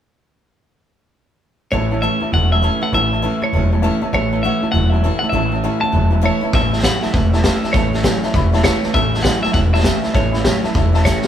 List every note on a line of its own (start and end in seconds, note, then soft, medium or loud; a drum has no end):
1.71 2.06 A1 medium
1.71 1.90 A2 medium
1.71 1.89 A2 medium
1.71 1.91 E3 medium
1.71 1.89 E3 medium
1.71 1.91 A3 medium
1.71 1.91 C#4 medium
1.71 1.90 E4 medium
1.71 2.03 C#5 medium
1.71 1.84 C#5 medium
1.71 1.84 E5 medium
1.71 1.84 A5 loud
1.91 2.01 A2 medium
1.91 2.01 E3 medium
1.91 2.02 A3 soft
1.91 2.02 C#4 soft
1.91 2.02 E4 soft
1.91 1.98 C#5 medium
1.91 1.98 E5 medium
1.91 1.98 A5 medium
2.02 2.19 A2 medium
2.02 2.21 A2 medium
2.02 2.22 E3 medium
2.02 2.20 E3 medium
2.02 2.22 A3 medium
2.02 2.21 C#4 medium
2.02 2.19 E4 medium
2.02 2.13 C#5 medium
2.02 2.30 E5 medium
2.02 2.14 E5 medium
2.02 2.14 A5 loud
2.20 2.31 A2 medium
2.20 2.32 E3 medium
2.20 2.32 A3 soft
2.20 2.33 C#4 soft
2.20 2.32 E4 soft
2.20 2.28 C#5 medium
2.20 2.28 E5 medium
2.20 2.28 A5 medium
2.20 muted upright bass stroke medium
2.32 2.67 E1 medium
2.32 2.49 A2 medium
2.32 2.52 E3 medium
2.32 2.50 F#3 medium
2.32 2.52 A3 medium
2.32 2.52 C#4 medium
2.32 2.51 E4 medium
2.32 2.44 C#5 medium
2.32 2.44 E5 medium
2.32 2.51 F#5 loud
2.32 2.45 A5 medium
2.51 2.61 A2 medium
2.51 2.61 F#3 medium
2.51 2.63 A3 soft
2.51 2.63 C#4 soft
2.51 2.63 E4 medium
2.51 2.58 C#5 medium
2.51 2.58 E5 medium
2.51 2.82 E5 loud
2.51 2.59 A5 medium
2.62 2.81 A2 medium
2.62 2.80 A2 medium
2.62 2.81 E3 medium
2.62 2.80 E3 medium
2.62 2.82 A3 medium
2.62 2.82 C#4 medium
2.62 2.80 E4 medium
2.62 2.74 C#5 medium
2.62 2.74 E5 medium
2.62 2.74 A5 loud
2.81 2.91 A2 medium
2.81 2.92 E3 medium
2.81 2.93 A3 soft
2.81 2.93 C#4 medium
2.81 2.93 E4 medium
2.81 2.89 C#5 medium
2.81 2.89 E5 medium
2.81 2.94 F#5 medium
2.81 2.89 A5 medium
2.81 muted upright bass stroke medium
2.92 3.27 A1 medium
2.92 3.10 A2 medium
2.92 3.12 A2 medium
2.92 3.10 E3 medium
2.92 3.12 E3 medium
2.92 3.13 A3 medium
2.92 3.13 C#4 medium
2.92 3.12 E4 medium
2.92 3.04 C#5 loud
2.92 3.04 E5 medium
2.92 3.44 E5 medium
2.92 3.05 A5 loud
3.12 3.22 A2 medium
3.12 3.22 E3 medium
3.12 3.23 A3 soft
3.12 3.23 C#4 medium
3.12 3.24 E4 medium
3.12 3.18 C#5 medium
3.12 3.19 E5 medium
3.12 3.19 A5 medium
3.22 3.41 A2 medium
3.22 3.40 A2 medium
3.22 3.40 E3 medium
3.22 3.42 E3 medium
3.22 3.42 A3 medium
3.22 3.41 C#4 medium
3.22 3.40 E4 medium
3.22 3.34 C#5 medium
3.22 3.34 E5 medium
3.22 3.34 A5 loud
3.41 3.52 A2 medium
3.41 3.52 E3 medium
3.41 3.53 A3 soft
3.41 3.53 C#4 soft
3.41 3.53 E4 soft
3.41 3.48 C#5 medium
3.41 3.71 C#5 medium
3.41 3.49 E5 medium
3.41 3.49 A5 medium
3.41 muted upright bass stroke medium
3.53 3.87 E1 medium
3.53 3.70 A2 medium
3.53 3.72 E3 medium
3.53 3.70 F#3 medium
3.53 3.72 A3 medium
3.53 3.72 C#4 medium
3.53 3.71 E4 medium
3.53 3.64 C#5 medium
3.53 3.65 E5 medium
3.53 3.65 A5 medium
3.72 3.82 A2 medium
3.72 3.82 F#3 medium
3.72 3.83 A3 soft
3.72 3.83 C#4 soft
3.72 3.83 E4 medium
3.72 3.79 C#5 medium
3.72 3.79 E5 medium
3.72 3.79 A5 medium
3.82 4.02 A2 medium
3.82 4.00 A2 medium
3.82 4.00 E3 medium
3.82 4.02 E3 medium
3.82 4.02 A3 loud
3.82 4.02 C#4 medium
3.82 4.00 E4 loud
3.82 3.94 C#5 loud
3.82 3.94 E5 loud
3.82 3.94 A5 loud
4.02 4.12 A2 medium
4.02 4.12 E3 medium
4.02 4.13 A3 soft
4.02 4.13 C#4 medium
4.02 4.13 E4 medium
4.02 4.08 C#5 medium
4.02 4.08 E5 medium
4.02 4.09 A5 loud
4.02 muted upright bass stroke medium
4.13 4.47 A1 medium
4.13 4.32 A2 medium
4.13 4.30 A2 medium
4.13 4.32 E3 medium
4.13 4.30 E3 medium
4.13 4.33 A3 medium
4.13 4.33 C#4 medium
4.13 4.31 E4 medium
4.13 4.25 C#5 medium
4.13 4.42 C#5 medium
4.13 4.24 E5 medium
4.13 4.25 A5 loud
4.33 4.42 A2 medium
4.33 4.43 E3 medium
4.33 4.44 A3 soft
4.33 4.44 C#4 medium
4.33 4.43 E4 medium
4.33 4.39 C#5 medium
4.33 4.39 E5 medium
4.33 4.39 A5 medium
4.43 4.60 A2 medium
4.43 4.62 A2 medium
4.43 4.61 E3 medium
4.43 4.63 E3 medium
4.43 4.63 A3 medium
4.43 4.63 C#4 medium
4.43 4.62 E4 medium
4.43 4.55 C#5 medium
4.43 4.71 E5 medium
4.43 4.55 E5 medium
4.43 4.55 F#5 loud
4.62 4.71 A2 medium
4.62 4.72 E3 medium
4.62 4.73 A3 soft
4.62 4.74 C#4 soft
4.62 4.74 E4 medium
4.62 4.69 C#5 medium
4.62 4.69 E5 medium
4.62 4.69 A5 medium
4.62 muted upright bass stroke medium
4.72 5.07 E1 medium
4.72 4.90 A2 medium
4.72 4.92 E3 medium
4.72 4.90 F#3 loud
4.72 4.93 A3 medium
4.72 4.93 C#4 medium
4.72 4.84 C#5 medium
4.72 4.84 E5 medium
4.72 4.90 F#5 medium
4.72 4.84 A5 medium
4.76 4.92 E4 medium
4.90 5.02 A2 medium
4.90 5.02 F#3 medium
4.90 5.04 E4 soft
4.90 4.98 C#5 medium
4.90 5.19 E5 medium
4.90 4.98 E5 medium
4.90 4.99 A5 medium
4.95 5.04 A3 soft
4.95 5.05 C#4 soft
5.03 5.20 A2 medium
5.03 5.22 A2 medium
5.03 5.21 E3 medium
5.03 5.23 E3 medium
5.03 5.23 A3 medium
5.03 5.23 C#4 medium
5.03 5.21 E4 medium
5.03 5.14 C#5 medium
5.03 5.14 E5 medium
5.03 5.15 A5 loud
5.19 5.31 A2 medium
5.19 5.32 E3 medium
5.19 5.33 E4 medium
5.19 5.29 C#5 medium
5.19 5.29 F#5 medium
5.19 5.29 A5 medium
5.19 muted upright bass stroke medium
5.23 5.32 A3 soft
5.23 5.32 C#4 soft
5.23 5.29 E5 medium
5.29 5.67 A1 medium
5.29 5.52 A2 medium
5.29 5.50 A2 medium
5.29 5.52 E3 medium
5.29 5.52 A3 medium
5.29 5.80 E5 loud
5.33 5.50 E3 medium
5.33 5.52 C#4 medium
5.33 5.50 E4 medium
5.33 5.45 C#5 medium
5.33 5.45 E5 medium
5.33 5.46 A5 loud
5.51 5.61 A2 medium
5.51 5.61 E3 medium
5.51 5.63 A3 soft
5.51 5.64 C#4 soft
5.51 5.63 E4 medium
5.51 5.59 C#5 medium
5.51 5.60 E5 medium
5.51 5.59 A5 medium
5.62 5.80 A2 medium
5.62 5.82 A2 medium
5.62 5.80 E3 medium
5.62 5.83 E3 medium
5.62 5.83 A3 medium
5.62 5.82 C#4 medium
5.62 5.81 E4 medium
5.62 5.75 C#5 loud
5.62 5.75 E5 medium
5.62 5.75 A5 loud
5.81 5.91 A2 medium
5.81 5.92 E3 medium
5.81 5.92 A3 soft
5.81 5.93 C#4 soft
5.81 5.93 E4 soft
5.81 5.90 C#5 medium
5.81 6.10 A5 loud
5.81 muted upright bass stroke medium
5.85 5.90 E5 medium
5.85 5.90 F#5 medium
5.92 6.27 E1 medium
5.92 6.10 A2 medium
5.92 6.12 E3 medium
5.92 6.10 F#3 loud
5.92 6.12 A3 medium
5.92 6.11 C#4 medium
5.92 6.09 E4 medium
5.92 6.05 C#5 medium
5.92 6.05 E5 medium
5.92 6.05 A5 medium
6.11 6.20 A2 medium
6.11 6.22 F#3 medium
6.11 6.21 A3 soft
6.11 6.21 C#4 soft
6.11 6.21 E4 medium
6.11 6.19 C#5 medium
6.11 6.19 E5 medium
6.11 6.19 A5 medium
6.21 6.42 A2 medium
6.21 6.40 A2 medium
6.21 6.42 E3 medium
6.21 6.40 E3 medium
6.21 6.42 A3 medium
6.21 6.42 C#4 medium
6.21 6.40 E4 loud
6.21 6.35 C#5 loud
6.21 6.35 E5 loud
6.21 6.35 A5 loud
6.26 6.56 C#5 medium
6.41 6.52 A2 medium
6.41 6.52 E3 medium
6.41 6.53 A3 soft
6.41 6.53 C#4 medium
6.41 6.53 E4 medium
6.41 6.50 C#5 medium
6.41 6.50 E5 medium
6.41 6.50 A5 medium
6.41 muted upright bass stroke medium
6.53 6.88 A1 medium
6.53 6.70 A2 medium
6.53 6.72 A2 medium
6.53 6.71 E3 medium
6.53 6.73 E3 medium
6.53 6.73 A3 medium
6.53 6.72 C#4 medium
6.53 6.70 E4 medium
6.53 6.65 C#5 medium
6.53 6.65 E5 medium
6.53 6.84 E5 loud
6.53 6.66 A5 loud
6.53 kick loud
6.53 snare soft
6.71 6.82 A2 medium
6.71 6.83 E3 medium
6.71 6.82 A3 soft
6.71 6.83 C#4 soft
6.71 6.83 E4 medium
6.71 6.79 C#5 medium
6.71 6.79 E5 medium
6.71 6.80 A5 medium
6.71 snare soft
6.79 7.02 A2 medium
6.79 snare soft
6.83 7.01 A2 medium
6.83 7.02 E3 medium
6.83 7.01 F#3 medium
6.83 7.03 A3 medium
6.83 7.03 C#4 medium
6.83 7.02 E4 medium
6.83 6.95 C#5 medium
6.83 6.95 E5 medium
6.83 7.03 F#5 loud
6.83 6.96 B5 medium
6.83 kick medium
6.83 snare loud
6.83 hi-hat pedal medium
7.02 7.12 A2 medium
7.02 7.13 F#3 medium
7.02 7.14 A3 soft
7.02 7.14 C#4 soft
7.02 7.14 E4 medium
7.02 7.09 C#5 medium
7.02 7.13 E5 medium
7.02 7.10 E5 medium
7.02 7.10 A5 medium
7.02 muted upright bass stroke medium
7.02 snare soft
7.13 7.48 E1 medium
7.13 7.31 A2 medium
7.13 7.31 E3 medium
7.13 7.33 E3 medium
7.13 7.33 A3 medium
7.13 7.34 C#4 medium
7.13 7.32 E4 medium
7.13 7.25 C#5 medium
7.13 7.25 E5 medium
7.13 7.33 F#5 loud
7.13 7.26 A5 medium
7.13 kick loud
7.13 snare soft
7.33 7.43 A2 medium
7.33 7.43 E3 medium
7.33 7.45 C#4 soft
7.33 7.44 E4 medium
7.33 7.40 C#5 medium
7.33 7.74 E5 medium
7.33 7.40 E5 medium
7.33 7.40 A5 loud
7.33 snare soft
7.37 7.43 A3 soft
7.44 7.61 A2 medium
7.44 7.63 A2 medium
7.44 7.61 E3 medium
7.44 7.64 E3 medium
7.44 7.63 A3 medium
7.44 7.64 C#4 medium
7.44 7.62 E4 medium
7.44 7.56 C#5 medium
7.44 7.56 E5 medium
7.44 7.56 A5 loud
7.44 kick medium
7.44 snare loud
7.44 hi-hat pedal medium
7.63 7.73 A2 medium
7.63 7.73 E3 medium
7.63 7.75 A3 soft
7.63 7.75 C#4 soft
7.63 7.74 E4 medium
7.63 7.70 C#5 medium
7.63 7.70 E5 medium
7.63 7.70 A5 medium
7.63 muted upright bass stroke medium
7.63 snare soft
7.73 8.09 A1 medium
7.73 7.93 A2 medium
7.73 7.91 A2 medium
7.73 7.92 E3 medium
7.73 7.94 E3 medium
7.73 7.94 A3 medium
7.73 7.92 C#4 medium
7.73 7.92 E4 medium
7.73 8.19 C#5 medium
7.73 7.86 C#5 loud
7.73 7.86 E5 medium
7.73 7.86 A5 loud
7.73 kick loud
7.73 snare soft
7.93 8.04 A2 medium
7.93 8.04 E3 medium
7.93 8.03 A3 soft
7.93 8.04 C#4 medium
7.93 8.04 E4 medium
7.93 8.00 C#5 medium
7.93 8.01 E5 medium
7.93 8.01 A5 medium
7.93 snare soft
8.03 8.23 A2 medium
8.03 8.22 A2 medium
8.03 8.23 E3 medium
8.03 8.22 F#3 medium
8.03 8.23 A3 medium
8.03 8.24 C#4 medium
8.03 8.23 E4 medium
8.03 8.16 C#5 medium
8.03 8.16 E5 medium
8.03 8.16 A5 medium
8.03 kick medium
8.03 snare loud
8.03 hi-hat pedal medium
8.23 8.33 A2 medium
8.23 8.34 F#3 medium
8.23 8.35 C#4 medium
8.23 8.35 E4 medium
8.23 8.30 C#5 medium
8.23 8.30 E5 medium
8.23 8.30 A5 loud
8.23 muted upright bass stroke medium
8.23 snare soft
8.27 8.34 A3 medium
8.33 8.68 E1 medium
8.33 8.52 A2 medium
8.33 8.53 E3 medium
8.33 8.52 E3 loud
8.33 8.54 A3 medium
8.33 8.53 C#4 medium
8.33 8.51 E4 medium
8.33 8.46 C#5 medium
8.33 8.46 E5 medium
8.33 8.46 B5 loud
8.33 kick loud
8.33 snare soft
8.53 8.64 A2 medium
8.53 8.64 E3 medium
8.53 8.63 A3 medium
8.53 8.63 C#4 medium
8.53 8.64 E4 medium
8.53 8.60 C#5 loud
8.53 8.61 E5 loud
8.53 8.61 A5 loud
8.53 snare soft
8.64 8.83 A2 medium
8.64 8.82 A2 medium
8.64 8.83 E3 medium
8.64 8.82 E3 medium
8.64 8.83 A3 medium
8.64 8.82 C#4 medium
8.64 8.81 E4 medium
8.64 8.93 C#5 medium
8.64 8.76 C#5 loud
8.64 8.77 E5 medium
8.64 8.77 A5 loud
8.64 kick medium
8.64 snare loud
8.64 hi-hat pedal medium
8.82 8.94 A2 medium
8.82 8.94 E3 medium
8.82 8.95 A3 soft
8.82 8.95 C#4 medium
8.82 8.94 E4 medium
8.82 8.90 C#5 medium
8.82 8.91 E5 medium
8.82 8.91 A5 medium
8.82 muted upright bass stroke medium
8.82 snare soft
8.94 9.29 A1 medium
8.94 9.14 A2 medium
8.94 9.12 A2 medium
8.94 9.14 E3 medium
8.94 9.12 E3 medium
8.94 9.14 A3 medium
8.94 9.14 C#4 medium
8.94 9.12 E4 medium
8.94 9.06 C#5 loud
8.94 9.22 E5 loud
8.94 9.06 E5 medium
8.94 9.06 A5 loud
8.94 kick loud
8.94 snare soft
9.14 9.23 A2 medium
9.14 9.24 E3 medium
9.14 9.25 A3 soft
9.14 9.26 C#4 medium
9.14 9.25 E4 medium
9.14 9.21 C#5 medium
9.14 9.21 E5 medium
9.14 9.21 A5 medium
9.14 snare soft
9.19 9.41 F#5 loud
9.19 snare soft
9.24 9.42 A2 medium
9.24 9.44 A2 medium
9.24 9.44 E3 medium
9.24 9.42 F#3 medium
9.24 9.45 A3 medium
9.24 9.45 C#4 medium
9.24 9.44 E4 medium
9.24 9.37 C#5 medium
9.24 9.37 E5 medium
9.24 9.37 A5 medium
9.24 kick medium
9.24 snare loud
9.24 hi-hat pedal medium
9.43 9.54 A2 medium
9.43 9.54 F#3 medium
9.43 9.55 C#4 medium
9.43 9.56 E4 medium
9.43 9.51 C#5 medium
9.43 9.53 E5 medium
9.43 9.51 E5 medium
9.43 9.51 A5 medium
9.43 muted upright bass stroke medium
9.43 snare soft
9.48 9.54 A3 soft
9.53 9.89 E1 medium
9.53 9.71 A2 medium
9.53 9.74 E3 medium
9.53 9.72 E3 loud
9.53 9.74 A3 medium
9.53 9.74 C#4 medium
9.53 9.72 E4 medium
9.53 9.66 C#5 medium
9.53 9.66 E5 medium
9.53 9.59 F#5 medium
9.53 9.66 A5 medium
9.53 kick loud
9.53 snare soft
9.73 9.83 A2 medium
9.73 9.83 E3 medium
9.73 9.84 A3 soft
9.73 9.84 C#4 medium
9.73 9.84 E4 medium
9.73 9.80 C#5 medium
9.73 10.17 E5 medium
9.73 9.81 E5 medium
9.73 9.81 A5 loud
9.73 snare soft
9.79 snare soft
9.84 10.04 A2 medium
9.84 10.02 A2 medium
9.84 10.04 E3 medium
9.84 10.02 E3 medium
9.84 10.04 A3 medium
9.84 10.03 C#4 medium
9.84 10.02 E4 medium
9.84 9.96 C#5 loud
9.84 9.96 E5 medium
9.84 9.96 A5 loud
9.84 kick medium
9.84 snare loud
9.84 hi-hat pedal medium
10.02 10.14 A2 medium
10.02 10.14 E3 medium
10.02 10.14 A3 soft
10.02 10.15 C#4 soft
10.02 10.15 E4 medium
10.02 10.10 C#5 medium
10.02 10.10 E5 medium
10.02 10.10 A5 medium
10.02 muted upright bass stroke medium
10.02 snare soft
10.13 10.49 A1 medium
10.13 10.34 A2 medium
10.13 10.33 A2 medium
10.13 10.34 E3 medium
10.13 10.33 E3 medium
10.13 10.34 A3 medium
10.13 10.34 C#4 medium
10.13 10.32 E4 medium
10.13 10.26 C#5 medium
10.13 10.61 C#5 medium
10.13 10.26 E5 medium
10.13 10.26 A5 loud
10.13 kick loud
10.13 snare soft
10.32 10.45 A2 medium
10.32 10.45 E3 medium
10.32 10.46 A3 soft
10.32 10.46 C#4 soft
10.32 10.45 E4 medium
10.32 10.40 C#5 medium
10.32 10.40 E5 medium
10.32 10.40 B5 medium
10.32 snare soft
10.45 10.64 A2 medium
10.45 10.63 A2 medium
10.45 10.65 E3 medium
10.45 10.63 F#3 medium
10.45 10.65 A3 medium
10.45 10.64 C#4 medium
10.45 10.62 E4 medium
10.45 10.57 C#5 medium
10.45 10.57 E5 medium
10.45 10.57 A5 medium
10.45 kick medium
10.45 snare loud
10.45 hi-hat pedal medium
10.63 10.73 A2 medium
10.63 10.75 F#3 medium
10.63 10.74 A3 soft
10.63 10.75 C#4 medium
10.63 10.75 E4 medium
10.63 10.71 C#5 medium
10.63 10.71 E5 medium
10.63 10.71 A5 loud
10.63 muted upright bass stroke medium
10.63 snare soft
10.74 11.10 E1 medium
10.74 10.92 A2 medium
10.74 10.94 E3 medium
10.74 10.92 E3 loud
10.74 10.95 A3 medium
10.74 10.93 C#4 medium
10.74 10.92 E4 medium
10.74 10.87 C#5 medium
10.74 10.87 E5 medium
10.74 10.88 A5 loud
10.74 kick loud
10.74 snare soft
10.93 11.04 A2 medium
10.93 11.05 E3 medium
10.93 11.04 A3 soft
10.93 11.04 C#4 medium
10.93 11.05 E4 medium
10.93 11.01 C#5 loud
10.93 11.01 E5 loud
10.93 11.02 A5 loud
10.93 snare soft
11.04 11.24 A2 medium
11.04 11.23 A2 medium
11.04 11.25 E3 medium
11.04 11.23 E3 medium
11.04 11.25 A3 medium
11.04 11.24 C#4 medium
11.04 11.22 E4 medium
11.04 11.27 C#5 medium
11.04 11.17 C#5 medium
11.04 11.18 E5 medium
11.04 11.17 A5 loud
11.04 kick medium
11.04 snare medium
11.04 hi-hat pedal medium
11.23 11.27 E4 medium
11.23 muted upright bass stroke medium
11.23 snare medium